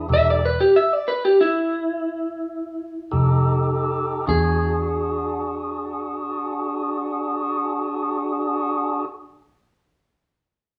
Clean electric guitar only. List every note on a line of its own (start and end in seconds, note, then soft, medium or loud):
0.00 0.44 B4 medium
0.14 0.27 E5 loud
0.30 0.43 D5 medium
0.45 0.59 B4 medium
0.61 0.74 G4 medium
0.76 0.93 E5 medium
0.93 1.07 D5 medium
1.08 1.23 B4 medium
1.25 1.39 G4 medium
1.41 3.10 E4 medium
4.29 9.07 G#4 medium